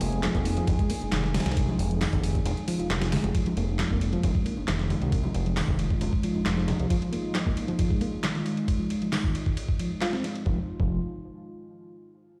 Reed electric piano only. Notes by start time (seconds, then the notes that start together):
0.01 A#3
0.23 F3
0.35 A#3
0.57 F3
0.79 G#3
0.90 A#3
1.12 D#3
1.68 F3
1.91 F3
2.01 D#3
2.68 F3
2.80 F4
3.02 F3
3.13 G#3
3.35 F3
3.46 F3
3.57 A#3
3.79 F3
3.91 A#3
4.13 F3
4.35 G#3
4.46 A#3
4.68 D#3
5.24 F3
5.46 F3
5.57 D#3
6.24 F3
6.57 F3
6.90 F3
7.02 F3
7.12 A#3
7.34 F3
7.46 A#3
7.68 F3
7.91 G#3
8.01 A#3
8.24 D#3
8.80 F3
9.02 F3
9.12 D#3
9.79 F3
10.01 F4
10.13 C4
10.46 F3
10.80 F3